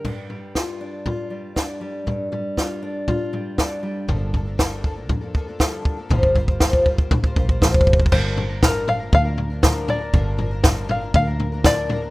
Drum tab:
CC |x-------------------------------|--------------------------------|--------------------------------|--------------------------------|
SD |--------o---------------o-------|--------o---------------o-------|--------o---------------o-------|--------o---------------o-------|
FT |o---o-----------o---------------|o---o-----------o---o-----------|o---o-----------o---------------|o---o-----------o---o-----------|
BD |o-------o-------o-------o-------|o-------o-------o-------o-------|o---o---o---o---o---o---o---o---|o-o-o-o-o-o-o-o-o-o-o-o-o-oooooo|

CC |x-------------------------------|--------------------------------|
SD |--------o---------------o-------|--------o---------------o-------|
FT |o---o---o---o---o---o---o---o---|o---o---o---o---o---o---o---o---|
BD |o-------o-------o-------o-------|o-------o-------o-------o-------|